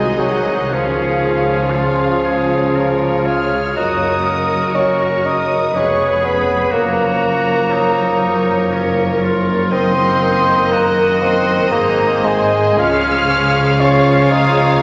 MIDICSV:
0, 0, Header, 1, 11, 480
1, 0, Start_track
1, 0, Key_signature, -5, "major"
1, 0, Tempo, 1038062
1, 335, Time_signature, 3, 2, 24, 8
1, 808, Tempo, 1008403
1, 1768, Tempo, 993377
1, 5608, Tempo, 1079137
1, 6088, Tempo, 1016949
1, 7047, End_track
2, 0, Start_track
2, 0, Title_t, "Flute"
2, 0, Program_c, 0, 73
2, 0, Note_on_c, 0, 80, 45
2, 88, Note_on_c, 0, 78, 52
2, 95, Note_off_c, 0, 80, 0
2, 324, Note_off_c, 0, 78, 0
2, 326, Note_on_c, 0, 77, 60
2, 1385, Note_off_c, 0, 77, 0
2, 1530, Note_on_c, 0, 89, 54
2, 1685, Note_off_c, 0, 89, 0
2, 1765, Note_on_c, 0, 87, 64
2, 2244, Note_on_c, 0, 85, 52
2, 2251, Note_off_c, 0, 87, 0
2, 2489, Note_on_c, 0, 87, 58
2, 2496, Note_off_c, 0, 85, 0
2, 2734, Note_on_c, 0, 85, 53
2, 2742, Note_off_c, 0, 87, 0
2, 2966, Note_on_c, 0, 83, 53
2, 2973, Note_off_c, 0, 85, 0
2, 3198, Note_on_c, 0, 82, 70
2, 3205, Note_off_c, 0, 83, 0
2, 4408, Note_off_c, 0, 82, 0
2, 4646, Note_on_c, 0, 84, 83
2, 5130, Note_on_c, 0, 82, 59
2, 5137, Note_off_c, 0, 84, 0
2, 5366, Note_on_c, 0, 84, 67
2, 5373, Note_off_c, 0, 82, 0
2, 5608, Note_on_c, 0, 82, 71
2, 5615, Note_off_c, 0, 84, 0
2, 5840, Note_on_c, 0, 80, 64
2, 5847, Note_off_c, 0, 82, 0
2, 6081, Note_off_c, 0, 80, 0
2, 6083, Note_on_c, 0, 89, 79
2, 6565, Note_on_c, 0, 85, 71
2, 6572, Note_off_c, 0, 89, 0
2, 6806, Note_on_c, 0, 87, 73
2, 6813, Note_off_c, 0, 85, 0
2, 7042, Note_off_c, 0, 87, 0
2, 7047, End_track
3, 0, Start_track
3, 0, Title_t, "Violin section"
3, 0, Program_c, 1, 48
3, 0, Note_on_c, 1, 80, 49
3, 87, Note_off_c, 1, 80, 0
3, 97, Note_on_c, 1, 78, 44
3, 338, Note_off_c, 1, 78, 0
3, 338, Note_on_c, 1, 77, 61
3, 1532, Note_off_c, 1, 77, 0
3, 1535, Note_on_c, 1, 89, 55
3, 1765, Note_off_c, 1, 89, 0
3, 1771, Note_on_c, 1, 87, 61
3, 2245, Note_on_c, 1, 85, 47
3, 2247, Note_off_c, 1, 87, 0
3, 2488, Note_on_c, 1, 87, 58
3, 2492, Note_off_c, 1, 85, 0
3, 2734, Note_off_c, 1, 87, 0
3, 2734, Note_on_c, 1, 85, 57
3, 2968, Note_on_c, 1, 83, 54
3, 2969, Note_off_c, 1, 85, 0
3, 3198, Note_on_c, 1, 82, 72
3, 3200, Note_off_c, 1, 83, 0
3, 4408, Note_off_c, 1, 82, 0
3, 4648, Note_on_c, 1, 84, 78
3, 5107, Note_off_c, 1, 84, 0
3, 5123, Note_on_c, 1, 82, 55
3, 5363, Note_on_c, 1, 84, 68
3, 5364, Note_off_c, 1, 82, 0
3, 5600, Note_off_c, 1, 84, 0
3, 5603, Note_on_c, 1, 82, 67
3, 5837, Note_off_c, 1, 82, 0
3, 5839, Note_on_c, 1, 80, 73
3, 6084, Note_off_c, 1, 80, 0
3, 6091, Note_on_c, 1, 89, 94
3, 6563, Note_on_c, 1, 85, 68
3, 6567, Note_off_c, 1, 89, 0
3, 6802, Note_off_c, 1, 85, 0
3, 6803, Note_on_c, 1, 87, 69
3, 7047, Note_off_c, 1, 87, 0
3, 7047, End_track
4, 0, Start_track
4, 0, Title_t, "Violin section"
4, 0, Program_c, 2, 48
4, 0, Note_on_c, 2, 75, 41
4, 322, Note_off_c, 2, 75, 0
4, 331, Note_on_c, 2, 73, 41
4, 3194, Note_off_c, 2, 73, 0
4, 3200, Note_on_c, 2, 73, 51
4, 4628, Note_off_c, 2, 73, 0
4, 4644, Note_on_c, 2, 75, 63
4, 6067, Note_off_c, 2, 75, 0
4, 6089, Note_on_c, 2, 77, 68
4, 7047, Note_off_c, 2, 77, 0
4, 7047, End_track
5, 0, Start_track
5, 0, Title_t, "Viola section"
5, 0, Program_c, 3, 48
5, 0, Note_on_c, 3, 66, 44
5, 0, Note_on_c, 3, 68, 48
5, 332, Note_on_c, 3, 65, 49
5, 333, Note_off_c, 3, 66, 0
5, 1747, Note_off_c, 3, 65, 0
5, 1748, Note_off_c, 3, 68, 0
5, 1768, Note_on_c, 3, 70, 48
5, 1769, Note_on_c, 3, 66, 52
5, 2716, Note_off_c, 3, 70, 0
5, 2733, Note_on_c, 3, 68, 52
5, 2734, Note_on_c, 3, 71, 48
5, 2736, Note_off_c, 3, 66, 0
5, 3190, Note_off_c, 3, 68, 0
5, 3193, Note_on_c, 3, 70, 45
5, 3195, Note_off_c, 3, 70, 0
5, 3195, Note_on_c, 3, 70, 51
5, 3200, Note_off_c, 3, 71, 0
5, 5604, Note_off_c, 3, 70, 0
5, 5607, Note_on_c, 3, 68, 56
5, 5608, Note_on_c, 3, 72, 63
5, 6088, Note_off_c, 3, 72, 0
5, 6092, Note_on_c, 3, 73, 72
5, 7047, Note_off_c, 3, 68, 0
5, 7047, Note_off_c, 3, 73, 0
5, 7047, End_track
6, 0, Start_track
6, 0, Title_t, "French horn section"
6, 0, Program_c, 4, 60
6, 0, Note_on_c, 4, 66, 44
6, 0, Note_on_c, 4, 68, 45
6, 333, Note_off_c, 4, 66, 0
6, 337, Note_on_c, 4, 65, 41
6, 1747, Note_off_c, 4, 68, 0
6, 1749, Note_off_c, 4, 65, 0
6, 1761, Note_on_c, 4, 73, 47
6, 1763, Note_on_c, 4, 66, 46
6, 2713, Note_off_c, 4, 66, 0
6, 2735, Note_on_c, 4, 68, 47
6, 3201, Note_off_c, 4, 68, 0
6, 3201, Note_on_c, 4, 70, 49
6, 4625, Note_off_c, 4, 73, 0
6, 4648, Note_on_c, 4, 75, 53
6, 5526, Note_off_c, 4, 70, 0
6, 5608, Note_on_c, 4, 68, 64
6, 6087, Note_off_c, 4, 75, 0
6, 6087, Note_on_c, 4, 73, 61
6, 7047, Note_off_c, 4, 68, 0
6, 7047, Note_off_c, 4, 73, 0
6, 7047, End_track
7, 0, Start_track
7, 0, Title_t, "Oboe"
7, 0, Program_c, 5, 68
7, 0, Note_on_c, 5, 63, 49
7, 336, Note_on_c, 5, 61, 48
7, 342, Note_off_c, 5, 63, 0
7, 807, Note_on_c, 5, 65, 44
7, 814, Note_off_c, 5, 61, 0
7, 1041, Note_off_c, 5, 65, 0
7, 1044, Note_on_c, 5, 68, 52
7, 1286, Note_on_c, 5, 70, 49
7, 1293, Note_off_c, 5, 68, 0
7, 1525, Note_on_c, 5, 68, 41
7, 1532, Note_off_c, 5, 70, 0
7, 1762, Note_off_c, 5, 68, 0
7, 1765, Note_on_c, 5, 66, 55
7, 1996, Note_on_c, 5, 70, 41
7, 2003, Note_off_c, 5, 66, 0
7, 2238, Note_off_c, 5, 70, 0
7, 2241, Note_on_c, 5, 70, 50
7, 2597, Note_off_c, 5, 70, 0
7, 2732, Note_on_c, 5, 68, 58
7, 3193, Note_on_c, 5, 66, 66
7, 3200, Note_off_c, 5, 68, 0
7, 3676, Note_on_c, 5, 63, 59
7, 3684, Note_off_c, 5, 66, 0
7, 4167, Note_on_c, 5, 61, 46
7, 4175, Note_off_c, 5, 63, 0
7, 4402, Note_off_c, 5, 61, 0
7, 4405, Note_on_c, 5, 65, 49
7, 4641, Note_on_c, 5, 63, 61
7, 4648, Note_off_c, 5, 65, 0
7, 5127, Note_on_c, 5, 66, 73
7, 5134, Note_off_c, 5, 63, 0
7, 5612, Note_on_c, 5, 63, 67
7, 5619, Note_off_c, 5, 66, 0
7, 5962, Note_off_c, 5, 63, 0
7, 6086, Note_on_c, 5, 61, 79
7, 6546, Note_off_c, 5, 61, 0
7, 6566, Note_on_c, 5, 65, 80
7, 7037, Note_off_c, 5, 65, 0
7, 7047, End_track
8, 0, Start_track
8, 0, Title_t, "Bassoon"
8, 0, Program_c, 6, 70
8, 0, Note_on_c, 6, 56, 66
8, 88, Note_on_c, 6, 54, 57
8, 95, Note_off_c, 6, 56, 0
8, 334, Note_off_c, 6, 54, 0
8, 339, Note_on_c, 6, 53, 55
8, 1529, Note_on_c, 6, 65, 67
8, 1536, Note_off_c, 6, 53, 0
8, 1685, Note_off_c, 6, 65, 0
8, 1768, Note_on_c, 6, 63, 66
8, 2242, Note_on_c, 6, 61, 60
8, 2250, Note_off_c, 6, 63, 0
8, 2488, Note_on_c, 6, 63, 59
8, 2495, Note_off_c, 6, 61, 0
8, 2730, Note_on_c, 6, 61, 64
8, 2737, Note_off_c, 6, 63, 0
8, 2966, Note_on_c, 6, 59, 69
8, 2973, Note_off_c, 6, 61, 0
8, 3193, Note_off_c, 6, 59, 0
8, 3196, Note_on_c, 6, 58, 61
8, 4388, Note_off_c, 6, 58, 0
8, 4645, Note_on_c, 6, 60, 83
8, 5129, Note_on_c, 6, 58, 67
8, 5137, Note_off_c, 6, 60, 0
8, 5368, Note_on_c, 6, 60, 73
8, 5375, Note_off_c, 6, 58, 0
8, 5609, Note_on_c, 6, 58, 87
8, 5616, Note_off_c, 6, 60, 0
8, 5846, Note_on_c, 6, 56, 80
8, 5852, Note_off_c, 6, 58, 0
8, 6084, Note_on_c, 6, 65, 87
8, 6091, Note_off_c, 6, 56, 0
8, 6567, Note_on_c, 6, 61, 76
8, 6574, Note_off_c, 6, 65, 0
8, 6802, Note_off_c, 6, 61, 0
8, 6805, Note_on_c, 6, 63, 85
8, 7047, Note_off_c, 6, 63, 0
8, 7047, End_track
9, 0, Start_track
9, 0, Title_t, "Trombone section"
9, 0, Program_c, 7, 61
9, 0, Note_on_c, 7, 51, 48
9, 0, Note_on_c, 7, 56, 37
9, 810, Note_off_c, 7, 51, 0
9, 814, Note_on_c, 7, 49, 43
9, 1752, Note_off_c, 7, 56, 0
9, 1771, Note_on_c, 7, 58, 45
9, 2717, Note_off_c, 7, 58, 0
9, 2736, Note_on_c, 7, 59, 52
9, 3115, Note_off_c, 7, 49, 0
9, 3115, Note_off_c, 7, 59, 0
9, 3198, Note_on_c, 7, 53, 51
9, 3201, Note_on_c, 7, 58, 51
9, 4627, Note_off_c, 7, 53, 0
9, 4651, Note_on_c, 7, 51, 55
9, 5587, Note_off_c, 7, 58, 0
9, 5608, Note_on_c, 7, 60, 65
9, 6085, Note_on_c, 7, 53, 65
9, 6085, Note_on_c, 7, 61, 59
9, 6088, Note_off_c, 7, 51, 0
9, 6088, Note_off_c, 7, 60, 0
9, 7047, Note_off_c, 7, 53, 0
9, 7047, Note_off_c, 7, 61, 0
9, 7047, End_track
10, 0, Start_track
10, 0, Title_t, "Cello section"
10, 0, Program_c, 8, 48
10, 0, Note_on_c, 8, 48, 48
10, 323, Note_off_c, 8, 48, 0
10, 335, Note_on_c, 8, 49, 44
10, 1768, Note_off_c, 8, 49, 0
10, 1768, Note_on_c, 8, 42, 46
10, 2733, Note_on_c, 8, 41, 45
10, 2735, Note_off_c, 8, 42, 0
10, 3190, Note_off_c, 8, 41, 0
10, 3197, Note_on_c, 8, 42, 53
10, 5605, Note_off_c, 8, 42, 0
10, 5608, Note_on_c, 8, 44, 70
10, 6088, Note_off_c, 8, 44, 0
10, 6088, Note_on_c, 8, 49, 68
10, 7029, Note_off_c, 8, 49, 0
10, 7047, End_track
11, 0, Start_track
11, 0, Title_t, "Double bass section"
11, 0, Program_c, 10, 48
11, 0, Note_on_c, 10, 36, 45
11, 325, Note_off_c, 10, 36, 0
11, 336, Note_on_c, 10, 37, 46
11, 1768, Note_off_c, 10, 37, 0
11, 1770, Note_on_c, 10, 30, 48
11, 2736, Note_off_c, 10, 30, 0
11, 2736, Note_on_c, 10, 29, 49
11, 3191, Note_off_c, 10, 29, 0
11, 3197, Note_on_c, 10, 30, 58
11, 5604, Note_on_c, 10, 32, 59
11, 5605, Note_off_c, 10, 30, 0
11, 6086, Note_off_c, 10, 32, 0
11, 6087, Note_on_c, 10, 37, 66
11, 7028, Note_off_c, 10, 37, 0
11, 7047, End_track
0, 0, End_of_file